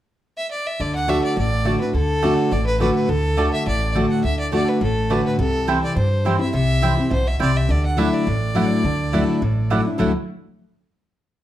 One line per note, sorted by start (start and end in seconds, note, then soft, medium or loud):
0.37 0.50 E5 loud
0.51 0.68 D5 medium
0.66 0.82 E5 medium
0.80 1.18 D2 medium
0.80 1.06 D3 medium
0.80 0.95 D5 loud
0.95 1.10 F#5 loud
1.08 1.35 D3 medium
1.08 1.18 A3 medium
1.08 1.36 A3 medium
1.08 1.36 D4 medium
1.08 1.18 F#4 loud
1.08 1.36 F#4 loud
1.08 1.18 D5 medium
1.08 1.24 E5 medium
1.08 1.18 A5 loud
1.24 1.37 D5 medium
1.37 1.75 A1 medium
1.37 1.92 A2 medium
1.37 1.78 D5 loud
1.65 1.80 D3 medium
1.65 1.75 A3 medium
1.65 1.80 A3 medium
1.65 1.80 D4 medium
1.65 1.75 F#4 medium
1.65 1.79 F#4 medium
1.65 1.75 D5 medium
1.65 1.75 A5 medium
1.80 1.95 D4 soft
1.80 1.94 F#4 medium
1.80 1.94 B4 medium
1.94 2.32 D2 medium
1.94 2.22 D3 medium
1.94 2.54 A4 loud
2.22 2.50 D3 medium
2.22 2.32 A3 medium
2.22 2.51 A3 medium
2.22 2.51 D4 medium
2.22 2.32 F#4 loud
2.22 2.51 F#4 medium
2.22 2.32 D5 loud
2.22 2.33 A5 loud
2.51 2.89 A1 medium
2.51 3.06 A2 medium
2.51 2.66 D5 medium
2.66 2.79 B4 loud
2.80 3.08 D3 medium
2.80 2.90 A3 medium
2.80 3.08 A3 medium
2.80 3.08 D4 medium
2.80 2.90 F#4 medium
2.80 3.09 F#4 medium
2.80 2.94 B4 medium
2.80 2.90 D5 medium
2.80 2.90 A5 medium
2.95 3.10 B4 medium
3.09 3.47 D2 medium
3.09 3.36 D3 medium
3.09 3.53 A4 loud
3.37 3.65 D3 medium
3.37 3.47 A3 medium
3.37 3.65 A3 medium
3.37 3.66 D4 medium
3.37 3.47 F#4 medium
3.37 3.66 F#4 loud
3.37 3.47 D5 medium
3.37 3.47 A5 loud
3.53 3.66 E5 medium
3.66 4.05 A1 medium
3.66 4.21 A2 medium
3.66 3.94 D5 medium
3.94 4.22 D3 medium
3.94 4.05 A3 medium
3.94 4.23 A3 medium
3.94 4.23 D4 medium
3.94 4.05 F#4 medium
3.94 4.23 F#4 medium
3.94 4.05 D5 medium
3.94 4.05 A5 loud
4.11 4.23 F#5 medium
4.24 4.62 D2 medium
4.24 4.51 D3 medium
4.24 4.38 E5 loud
4.40 4.52 D5 medium
4.52 4.80 D3 medium
4.52 4.62 A3 medium
4.52 4.80 A3 medium
4.52 4.81 D4 medium
4.52 4.62 F#4 medium
4.52 4.81 F#4 medium
4.52 4.70 D5 medium
4.52 4.62 D5 loud
4.52 4.62 A5 loud
4.68 4.81 B4 medium
4.81 5.19 A1 medium
4.81 5.36 A2 loud
4.81 5.13 A4 medium
5.10 5.38 D3 medium
5.10 5.20 A3 medium
5.10 5.38 A3 medium
5.10 5.38 D4 medium
5.10 5.20 F#4 medium
5.10 5.39 F#4 medium
5.10 5.26 B4 medium
5.10 5.20 D5 medium
5.10 5.20 A5 medium
5.26 5.39 B4 medium
5.39 5.77 C2 medium
5.39 5.94 C3 medium
5.39 5.80 A4 medium
5.67 5.95 E3 medium
5.67 5.95 G3 medium
5.67 5.77 C4 medium
5.67 5.96 C4 medium
5.67 5.77 E4 loud
5.67 5.96 E4 medium
5.67 5.77 C5 medium
5.67 5.78 G5 loud
5.84 5.96 D5 medium
5.96 6.34 G2 medium
5.96 6.51 G2 medium
5.96 6.38 C5 medium
6.25 6.40 E3 medium
6.25 6.40 G3 medium
6.25 6.35 C4 medium
6.25 6.40 C4 medium
6.25 6.35 E4 medium
6.25 6.38 E4 medium
6.25 6.35 C5 loud
6.25 6.35 G5 medium
6.39 6.54 C4 soft
6.39 6.53 E4 medium
6.39 6.53 E5 medium
6.53 6.92 C2 medium
6.53 7.09 C3 medium
6.53 7.08 E5 loud
6.82 6.97 E3 medium
6.82 6.97 G3 medium
6.82 6.92 C4 medium
6.82 6.98 C4 medium
6.82 6.92 E4 medium
6.82 6.96 E4 medium
6.82 6.92 C5 medium
6.82 6.93 G5 loud
6.97 7.12 C4 soft
6.97 7.11 E4 medium
7.11 7.36 B1 medium
7.11 7.39 B2 medium
7.11 7.29 C5 medium
7.27 7.41 E5 medium
7.40 7.65 C2 medium
7.40 7.68 C3 medium
7.40 7.50 C4 medium
7.40 7.50 E4 medium
7.40 7.50 C5 medium
7.40 7.58 D5 medium
7.40 7.50 G5 medium
7.57 7.72 E5 medium
7.69 8.07 D2 medium
7.69 8.24 D3 medium
7.69 7.85 D5 loud
7.86 8.00 F#5 medium
7.97 8.25 F#3 medium
7.97 8.07 A3 medium
7.97 8.25 A3 medium
7.97 8.26 D4 medium
7.97 8.07 E4 medium
7.97 8.26 E4 loud
7.97 8.08 D5 loud
7.97 8.15 E5 medium
7.97 8.08 F#5 medium
8.13 9.71 D5 medium
8.27 8.65 A1 medium
8.27 8.82 A2 loud
8.55 8.82 F#3 medium
8.55 8.65 A3 medium
8.55 8.83 A3 medium
8.55 8.83 D4 medium
8.55 8.65 E4 medium
8.55 8.84 E4 medium
8.55 8.65 D5 medium
8.55 8.65 F#5 medium
8.84 9.22 D2 medium
8.84 9.39 D3 medium
9.13 9.40 F#3 medium
9.13 9.22 A3 medium
9.13 9.41 A3 medium
9.13 9.41 D4 medium
9.13 9.23 E4 medium
9.13 9.41 E4 medium
9.13 9.23 D5 medium
9.13 9.23 F#5 medium
9.42 9.80 A1 medium
9.42 9.97 A2 medium
9.70 9.85 F#3 medium
9.70 9.80 A3 medium
9.70 9.85 A3 medium
9.70 9.86 D4 medium
9.70 9.80 E4 medium
9.70 9.83 E4 medium
9.70 9.80 D5 medium
9.70 9.80 F#5 medium
9.85 9.99 D4 soft
9.85 9.98 E4 medium
9.98 10.13 D2 medium
9.98 10.11 D3 medium
9.98 10.11 F#3 medium
9.98 10.11 A3 medium
9.98 10.11 D4 medium
9.98 10.11 E4 medium
9.98 10.12 E4 medium
9.98 10.11 D5 medium
9.98 10.12 F#5 medium